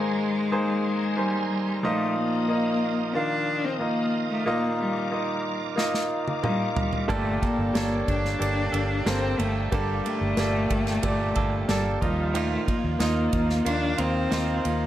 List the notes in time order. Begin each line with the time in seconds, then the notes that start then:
Already playing: G#2 D#3 G#3 A#3 D#4 G#4 C5 G#5 A#5 C6
0.51 A#3 D#4 G#4 C5
1.16 G3 A#3 D#4 C5 G#5
1.49 G3
1.83 A#2 F3 A3 D#4 F4 D#5 F5 D#6
2.16 A#3
2.48 A#3 D#4 F4 D#5
3.14 D#3 A#3 D4 F4 F5
3.65 C4
3.79 A#3 D#4 F4 D#5
4.31 A3
4.46 A#2 A#3 D#4 F4 D#5 D6
4.81 G3
5.11 A#3 D#4 F4 D#5
5.76 A#3 D#4 F4 D#5, snare
5.94 snare
6.28 high tom
6.42 G3 A#3 D#4 F4 D#5, mid tom
6.76 G3, floor tom
6.93 floor tom
7.08 G1 G2 A#2 D3 G3 A3 A#3 D4 G4 A4 D5 G5 A5, kick, ride
7.42 G3 A#3 D4 A4, kick, ride
7.59 G1
7.73 G1 G3 A#3 D4 G4 A4 C#5, snare, ride
7.82 D5
8.08 G1 D4, kick, ride
8.25 snare
8.39 G1 A#3 G4 A4 D5, ride
8.72 G1 G3 A#3 D4 A4, ride
9.05 G1 G3 A#3 C4 D4 G4 A4 C5, snare, ride
9.39 G1 G3 A3 A#3 D4 A4, ride
9.72 G1 G2 D3 G3 A#3 D4 G4 A4 D5, kick, ride
10.05 G3 A3 A#3 D4 A4, ride
10.21 G1
10.37 G1 A#2 G3 A#3 D4 G4 A4 D5, snare, ride
10.70 G1, kick, ride
10.87 snare, ride
11.02 G1 A#2 G4 A4 D5, kick, ride
11.35 G1 G3 A#3 D4 A4, kick, ride
11.68 G1 G3 A#3 D4 G4 A4 D5, snare, ride
12.01 D#2 A#2 F3 G3 A#3 D#4 F4 D#5 F5, kick, ride
12.34 D#3 F3 A3 A#3 D#4 F4, ride
12.66 A#3 D#4 F4, kick, ride
12.84 D#2
12.99 D#2 F3 A#3 D#4 F4 D#5, snare, ride
13.33 D#2, kick, ride
13.50 snare
13.65 D#2 D#3 A#3 D4 F4 F5, ride
13.98 D#2 A#3 C4 D#4 F4, ride
14.30 D#2 F3 A#3 D#4 F4 C5, snare, ride
14.64 D#2 A#3 D#4 F4, ride